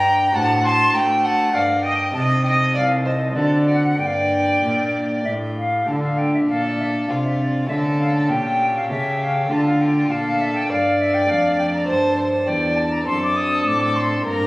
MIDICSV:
0, 0, Header, 1, 5, 480
1, 0, Start_track
1, 0, Key_signature, -2, "minor"
1, 0, Tempo, 601805
1, 279, Time_signature, 3, 2, 24, 8
1, 2684, Tempo, 626305
1, 4620, Key_signature, -1, "minor"
1, 5084, Tempo, 602410
1, 7484, Tempo, 593472
1, 11496, End_track
2, 0, Start_track
2, 0, Title_t, "Flute"
2, 0, Program_c, 0, 73
2, 0, Note_on_c, 0, 82, 118
2, 272, Note_on_c, 0, 81, 118
2, 284, Note_off_c, 0, 82, 0
2, 499, Note_off_c, 0, 81, 0
2, 503, Note_on_c, 0, 84, 102
2, 738, Note_off_c, 0, 84, 0
2, 743, Note_on_c, 0, 82, 98
2, 798, Note_off_c, 0, 82, 0
2, 981, Note_on_c, 0, 81, 109
2, 1224, Note_on_c, 0, 77, 101
2, 1236, Note_off_c, 0, 81, 0
2, 1458, Note_on_c, 0, 79, 91
2, 1470, Note_off_c, 0, 77, 0
2, 1699, Note_off_c, 0, 79, 0
2, 1704, Note_on_c, 0, 81, 102
2, 1759, Note_off_c, 0, 81, 0
2, 1942, Note_on_c, 0, 79, 79
2, 1998, Note_off_c, 0, 79, 0
2, 2190, Note_on_c, 0, 77, 92
2, 2431, Note_off_c, 0, 77, 0
2, 2437, Note_on_c, 0, 75, 87
2, 2680, Note_on_c, 0, 74, 89
2, 2691, Note_off_c, 0, 75, 0
2, 2918, Note_on_c, 0, 78, 85
2, 2929, Note_off_c, 0, 74, 0
2, 3158, Note_off_c, 0, 78, 0
2, 3163, Note_on_c, 0, 79, 77
2, 3219, Note_on_c, 0, 77, 76
2, 3231, Note_off_c, 0, 79, 0
2, 3277, Note_on_c, 0, 79, 95
2, 3288, Note_off_c, 0, 77, 0
2, 4122, Note_off_c, 0, 79, 0
2, 4127, Note_on_c, 0, 76, 74
2, 4183, Note_off_c, 0, 76, 0
2, 4373, Note_on_c, 0, 77, 65
2, 4610, Note_on_c, 0, 81, 71
2, 4622, Note_off_c, 0, 77, 0
2, 4722, Note_off_c, 0, 81, 0
2, 4727, Note_on_c, 0, 77, 59
2, 4843, Note_on_c, 0, 79, 68
2, 4855, Note_off_c, 0, 77, 0
2, 4959, Note_off_c, 0, 79, 0
2, 4964, Note_on_c, 0, 76, 62
2, 5010, Note_off_c, 0, 76, 0
2, 5076, Note_on_c, 0, 77, 73
2, 5197, Note_off_c, 0, 77, 0
2, 5203, Note_on_c, 0, 74, 66
2, 5251, Note_off_c, 0, 74, 0
2, 5317, Note_on_c, 0, 76, 62
2, 5372, Note_off_c, 0, 76, 0
2, 5552, Note_on_c, 0, 77, 67
2, 5600, Note_off_c, 0, 77, 0
2, 5677, Note_on_c, 0, 76, 59
2, 5788, Note_off_c, 0, 76, 0
2, 5793, Note_on_c, 0, 74, 68
2, 6027, Note_off_c, 0, 74, 0
2, 6031, Note_on_c, 0, 76, 65
2, 6086, Note_off_c, 0, 76, 0
2, 6278, Note_on_c, 0, 77, 73
2, 6384, Note_off_c, 0, 77, 0
2, 6389, Note_on_c, 0, 81, 71
2, 6511, Note_off_c, 0, 81, 0
2, 6516, Note_on_c, 0, 79, 71
2, 6873, Note_off_c, 0, 79, 0
2, 6886, Note_on_c, 0, 77, 67
2, 6993, Note_off_c, 0, 77, 0
2, 6998, Note_on_c, 0, 76, 78
2, 7237, Note_off_c, 0, 76, 0
2, 7243, Note_on_c, 0, 77, 75
2, 7478, Note_off_c, 0, 77, 0
2, 7485, Note_on_c, 0, 81, 86
2, 7602, Note_off_c, 0, 81, 0
2, 7607, Note_on_c, 0, 77, 64
2, 7732, Note_on_c, 0, 79, 76
2, 7744, Note_off_c, 0, 77, 0
2, 7964, Note_on_c, 0, 77, 84
2, 7976, Note_off_c, 0, 79, 0
2, 8212, Note_on_c, 0, 76, 79
2, 8225, Note_off_c, 0, 77, 0
2, 8322, Note_off_c, 0, 76, 0
2, 8327, Note_on_c, 0, 79, 75
2, 8439, Note_off_c, 0, 79, 0
2, 8444, Note_on_c, 0, 77, 76
2, 8680, Note_off_c, 0, 77, 0
2, 8686, Note_on_c, 0, 76, 80
2, 8805, Note_on_c, 0, 79, 88
2, 8817, Note_off_c, 0, 76, 0
2, 8929, Note_on_c, 0, 77, 85
2, 8941, Note_off_c, 0, 79, 0
2, 9162, Note_off_c, 0, 77, 0
2, 9167, Note_on_c, 0, 79, 81
2, 9216, Note_off_c, 0, 79, 0
2, 9284, Note_on_c, 0, 82, 76
2, 9405, Note_on_c, 0, 81, 91
2, 9417, Note_off_c, 0, 82, 0
2, 9663, Note_off_c, 0, 81, 0
2, 9875, Note_on_c, 0, 79, 89
2, 10114, Note_on_c, 0, 81, 81
2, 10126, Note_off_c, 0, 79, 0
2, 10243, Note_on_c, 0, 82, 92
2, 10255, Note_off_c, 0, 81, 0
2, 10354, Note_off_c, 0, 82, 0
2, 10358, Note_on_c, 0, 84, 103
2, 10480, Note_off_c, 0, 84, 0
2, 10490, Note_on_c, 0, 86, 83
2, 10604, Note_on_c, 0, 87, 93
2, 10616, Note_off_c, 0, 86, 0
2, 10853, Note_on_c, 0, 86, 88
2, 10865, Note_off_c, 0, 87, 0
2, 11085, Note_on_c, 0, 84, 88
2, 11097, Note_off_c, 0, 86, 0
2, 11317, Note_off_c, 0, 84, 0
2, 11322, Note_on_c, 0, 82, 98
2, 11496, Note_off_c, 0, 82, 0
2, 11496, End_track
3, 0, Start_track
3, 0, Title_t, "Violin"
3, 0, Program_c, 1, 40
3, 0, Note_on_c, 1, 79, 84
3, 281, Note_on_c, 1, 78, 85
3, 293, Note_off_c, 1, 79, 0
3, 523, Note_on_c, 1, 81, 92
3, 535, Note_off_c, 1, 78, 0
3, 757, Note_on_c, 1, 79, 95
3, 769, Note_off_c, 1, 81, 0
3, 995, Note_on_c, 1, 78, 88
3, 1007, Note_off_c, 1, 79, 0
3, 1238, Note_on_c, 1, 74, 81
3, 1250, Note_off_c, 1, 78, 0
3, 1470, Note_off_c, 1, 74, 0
3, 1474, Note_on_c, 1, 75, 68
3, 1710, Note_off_c, 1, 75, 0
3, 1714, Note_on_c, 1, 75, 83
3, 1948, Note_off_c, 1, 75, 0
3, 1953, Note_on_c, 1, 75, 85
3, 2188, Note_off_c, 1, 75, 0
3, 2192, Note_on_c, 1, 74, 74
3, 2256, Note_off_c, 1, 74, 0
3, 2436, Note_on_c, 1, 72, 69
3, 2500, Note_off_c, 1, 72, 0
3, 2679, Note_on_c, 1, 69, 64
3, 2914, Note_off_c, 1, 69, 0
3, 2922, Note_on_c, 1, 74, 72
3, 2983, Note_off_c, 1, 74, 0
3, 3159, Note_on_c, 1, 74, 71
3, 4116, Note_off_c, 1, 74, 0
3, 5084, Note_on_c, 1, 69, 63
3, 5566, Note_on_c, 1, 65, 53
3, 5578, Note_off_c, 1, 69, 0
3, 6040, Note_off_c, 1, 65, 0
3, 6044, Note_on_c, 1, 69, 53
3, 6517, Note_on_c, 1, 67, 61
3, 6529, Note_off_c, 1, 69, 0
3, 7002, Note_off_c, 1, 67, 0
3, 7006, Note_on_c, 1, 67, 57
3, 7482, Note_on_c, 1, 65, 59
3, 7494, Note_off_c, 1, 67, 0
3, 7969, Note_on_c, 1, 69, 71
3, 7982, Note_off_c, 1, 65, 0
3, 8445, Note_on_c, 1, 74, 69
3, 8457, Note_off_c, 1, 69, 0
3, 9398, Note_off_c, 1, 74, 0
3, 9403, Note_on_c, 1, 72, 79
3, 9633, Note_off_c, 1, 72, 0
3, 9638, Note_on_c, 1, 72, 61
3, 9878, Note_on_c, 1, 74, 62
3, 9890, Note_off_c, 1, 72, 0
3, 10360, Note_off_c, 1, 74, 0
3, 10364, Note_on_c, 1, 69, 69
3, 11303, Note_off_c, 1, 69, 0
3, 11319, Note_on_c, 1, 70, 64
3, 11496, Note_off_c, 1, 70, 0
3, 11496, End_track
4, 0, Start_track
4, 0, Title_t, "Pipe organ"
4, 0, Program_c, 2, 19
4, 0, Note_on_c, 2, 43, 58
4, 0, Note_on_c, 2, 62, 54
4, 0, Note_on_c, 2, 67, 52
4, 0, Note_on_c, 2, 74, 51
4, 222, Note_off_c, 2, 62, 0
4, 238, Note_on_c, 2, 62, 64
4, 244, Note_off_c, 2, 43, 0
4, 249, Note_on_c, 2, 66, 56
4, 250, Note_off_c, 2, 67, 0
4, 256, Note_off_c, 2, 74, 0
4, 259, Note_on_c, 2, 72, 61
4, 272, Note_on_c, 2, 45, 60
4, 717, Note_off_c, 2, 45, 0
4, 750, Note_on_c, 2, 57, 64
4, 1176, Note_off_c, 2, 62, 0
4, 1187, Note_off_c, 2, 66, 0
4, 1192, Note_off_c, 2, 72, 0
4, 1192, Note_on_c, 2, 62, 54
4, 1198, Note_off_c, 2, 57, 0
4, 1205, Note_on_c, 2, 67, 53
4, 1216, Note_on_c, 2, 70, 52
4, 1227, Note_on_c, 2, 43, 54
4, 1675, Note_on_c, 2, 60, 54
4, 1679, Note_off_c, 2, 43, 0
4, 1679, Note_off_c, 2, 62, 0
4, 1685, Note_off_c, 2, 67, 0
4, 1688, Note_on_c, 2, 63, 53
4, 1691, Note_off_c, 2, 70, 0
4, 1700, Note_on_c, 2, 69, 54
4, 1713, Note_on_c, 2, 48, 64
4, 2165, Note_off_c, 2, 48, 0
4, 2202, Note_on_c, 2, 36, 60
4, 2635, Note_off_c, 2, 60, 0
4, 2642, Note_off_c, 2, 63, 0
4, 2648, Note_off_c, 2, 69, 0
4, 2651, Note_on_c, 2, 60, 47
4, 2654, Note_off_c, 2, 36, 0
4, 2661, Note_on_c, 2, 62, 44
4, 2674, Note_on_c, 2, 66, 46
4, 2686, Note_on_c, 2, 50, 50
4, 3126, Note_off_c, 2, 62, 0
4, 3129, Note_on_c, 2, 58, 50
4, 3133, Note_off_c, 2, 60, 0
4, 3134, Note_off_c, 2, 50, 0
4, 3141, Note_on_c, 2, 62, 46
4, 3145, Note_off_c, 2, 66, 0
4, 3153, Note_on_c, 2, 67, 45
4, 3165, Note_on_c, 2, 43, 51
4, 3621, Note_off_c, 2, 43, 0
4, 3651, Note_on_c, 2, 46, 54
4, 4091, Note_off_c, 2, 58, 0
4, 4097, Note_off_c, 2, 62, 0
4, 4107, Note_off_c, 2, 46, 0
4, 4141, Note_on_c, 2, 45, 45
4, 4583, Note_off_c, 2, 67, 0
4, 4588, Note_on_c, 2, 57, 39
4, 4590, Note_off_c, 2, 45, 0
4, 4597, Note_on_c, 2, 62, 38
4, 4611, Note_on_c, 2, 65, 36
4, 4622, Note_on_c, 2, 50, 42
4, 5054, Note_off_c, 2, 50, 0
4, 5054, Note_off_c, 2, 57, 0
4, 5086, Note_on_c, 2, 46, 45
4, 5533, Note_off_c, 2, 46, 0
4, 5559, Note_on_c, 2, 48, 42
4, 5998, Note_off_c, 2, 62, 0
4, 6002, Note_on_c, 2, 57, 39
4, 6005, Note_off_c, 2, 65, 0
4, 6008, Note_off_c, 2, 48, 0
4, 6015, Note_on_c, 2, 61, 43
4, 6027, Note_on_c, 2, 69, 37
4, 6040, Note_on_c, 2, 50, 47
4, 6485, Note_off_c, 2, 57, 0
4, 6487, Note_off_c, 2, 50, 0
4, 6519, Note_on_c, 2, 46, 49
4, 6971, Note_off_c, 2, 46, 0
4, 7000, Note_on_c, 2, 49, 42
4, 7438, Note_off_c, 2, 61, 0
4, 7444, Note_off_c, 2, 69, 0
4, 7446, Note_on_c, 2, 57, 40
4, 7450, Note_off_c, 2, 49, 0
4, 7459, Note_on_c, 2, 62, 42
4, 7473, Note_on_c, 2, 69, 43
4, 7485, Note_on_c, 2, 50, 45
4, 7931, Note_off_c, 2, 57, 0
4, 7934, Note_off_c, 2, 50, 0
4, 7966, Note_on_c, 2, 46, 56
4, 8413, Note_off_c, 2, 46, 0
4, 8442, Note_on_c, 2, 43, 46
4, 8881, Note_off_c, 2, 62, 0
4, 8888, Note_off_c, 2, 69, 0
4, 8890, Note_on_c, 2, 57, 48
4, 8892, Note_off_c, 2, 43, 0
4, 8902, Note_on_c, 2, 62, 50
4, 8913, Note_on_c, 2, 69, 49
4, 8925, Note_on_c, 2, 41, 55
4, 9371, Note_off_c, 2, 41, 0
4, 9371, Note_off_c, 2, 57, 0
4, 9408, Note_on_c, 2, 43, 54
4, 9852, Note_off_c, 2, 43, 0
4, 9887, Note_on_c, 2, 40, 48
4, 10321, Note_off_c, 2, 62, 0
4, 10327, Note_off_c, 2, 69, 0
4, 10332, Note_on_c, 2, 60, 53
4, 10335, Note_off_c, 2, 40, 0
4, 10344, Note_on_c, 2, 62, 52
4, 10355, Note_on_c, 2, 69, 49
4, 10368, Note_on_c, 2, 42, 54
4, 10815, Note_off_c, 2, 42, 0
4, 10847, Note_on_c, 2, 45, 58
4, 11276, Note_off_c, 2, 60, 0
4, 11281, Note_off_c, 2, 62, 0
4, 11287, Note_on_c, 2, 58, 46
4, 11288, Note_off_c, 2, 69, 0
4, 11290, Note_off_c, 2, 45, 0
4, 11298, Note_on_c, 2, 62, 47
4, 11310, Note_on_c, 2, 67, 48
4, 11322, Note_on_c, 2, 43, 55
4, 11496, Note_off_c, 2, 43, 0
4, 11496, Note_off_c, 2, 58, 0
4, 11496, Note_off_c, 2, 62, 0
4, 11496, Note_off_c, 2, 67, 0
4, 11496, End_track
5, 0, Start_track
5, 0, Title_t, "Cello"
5, 0, Program_c, 3, 42
5, 0, Note_on_c, 3, 43, 72
5, 267, Note_off_c, 3, 43, 0
5, 275, Note_on_c, 3, 45, 80
5, 741, Note_off_c, 3, 45, 0
5, 748, Note_on_c, 3, 57, 83
5, 1229, Note_on_c, 3, 43, 74
5, 1241, Note_off_c, 3, 57, 0
5, 1705, Note_off_c, 3, 43, 0
5, 1709, Note_on_c, 3, 48, 82
5, 2193, Note_on_c, 3, 36, 79
5, 2205, Note_off_c, 3, 48, 0
5, 2674, Note_off_c, 3, 36, 0
5, 2679, Note_on_c, 3, 50, 68
5, 3152, Note_off_c, 3, 50, 0
5, 3162, Note_on_c, 3, 43, 81
5, 3640, Note_off_c, 3, 43, 0
5, 3651, Note_on_c, 3, 46, 68
5, 4128, Note_off_c, 3, 46, 0
5, 4138, Note_on_c, 3, 45, 65
5, 4610, Note_off_c, 3, 45, 0
5, 4616, Note_on_c, 3, 50, 61
5, 5051, Note_off_c, 3, 50, 0
5, 5083, Note_on_c, 3, 46, 56
5, 5554, Note_off_c, 3, 46, 0
5, 5561, Note_on_c, 3, 48, 57
5, 6031, Note_off_c, 3, 48, 0
5, 6036, Note_on_c, 3, 50, 67
5, 6515, Note_on_c, 3, 46, 61
5, 6527, Note_off_c, 3, 50, 0
5, 6999, Note_on_c, 3, 49, 58
5, 7010, Note_off_c, 3, 46, 0
5, 7474, Note_off_c, 3, 49, 0
5, 7479, Note_on_c, 3, 50, 73
5, 7954, Note_off_c, 3, 50, 0
5, 7964, Note_on_c, 3, 46, 62
5, 8435, Note_off_c, 3, 46, 0
5, 8441, Note_on_c, 3, 43, 62
5, 8927, Note_on_c, 3, 41, 75
5, 8939, Note_off_c, 3, 43, 0
5, 9406, Note_on_c, 3, 43, 67
5, 9418, Note_off_c, 3, 41, 0
5, 9883, Note_on_c, 3, 40, 69
5, 9895, Note_off_c, 3, 43, 0
5, 10363, Note_off_c, 3, 40, 0
5, 10368, Note_on_c, 3, 42, 72
5, 10838, Note_off_c, 3, 42, 0
5, 10847, Note_on_c, 3, 45, 71
5, 11313, Note_off_c, 3, 45, 0
5, 11324, Note_on_c, 3, 43, 71
5, 11496, Note_off_c, 3, 43, 0
5, 11496, End_track
0, 0, End_of_file